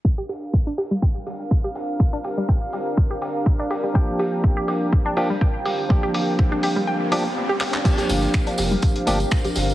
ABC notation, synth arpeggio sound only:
X:1
M:4/4
L:1/16
Q:"Swing 16ths" 1/4=123
K:Gm
V:1 name="Synth arpeggio sound"
z G G z2 D G G, g z G z2 G G z | z D G G, g z G z2 G G z2 D G G, | g z G z2 G G z2 D G G, g z G z | z G G z2 D G G, g z G z2 G G z |
z G G z2 D G G, g z G z2 G G z |]